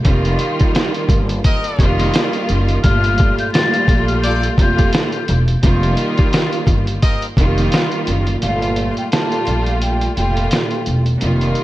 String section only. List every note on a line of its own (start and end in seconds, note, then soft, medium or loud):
0.04 1.67 D#3 loud
0.04 1.67 G3 medium
0.04 1.68 A#3 medium
0.04 1.68 F4 loud
1.80 2.77 D#3 loud
1.80 2.77 G3 medium
1.80 2.78 A#3 medium
1.80 2.78 F4 loud
2.84 3.49 A#2 loud
2.84 3.49 G3 medium
2.84 3.50 A3 medium
2.84 3.50 F4 loud
3.54 4.51 A#2 loud
3.54 4.52 G3 loud
3.54 4.52 A3 loud
3.54 4.52 F4 loud
4.57 5.40 A#2 loud
4.57 5.40 G3 medium
4.57 5.40 A3 loud
4.57 5.41 F4 loud
5.63 7.26 D#3 loud
5.63 7.26 G3 medium
5.63 7.26 A#3 loud
5.63 7.26 F4 loud
7.38 8.35 D#3 loud
7.38 8.36 G3 medium
7.38 8.36 A#3 medium
7.38 8.36 F4 loud
8.42 9.07 A#2 loud
8.42 9.07 G3 medium
8.42 9.08 A3 medium
8.42 9.08 F4 loud
9.12 10.09 A#2 loud
9.12 10.10 G3 loud
9.12 10.10 A3 medium
9.12 10.10 F4 loud
10.15 10.98 A#2 loud
10.15 10.98 G3 medium
10.15 10.98 A3 medium
10.15 10.99 F4 loud
11.20 11.64 D#3 loud
11.20 11.64 G3 medium
11.20 11.64 A#3 loud
11.20 11.64 F4 loud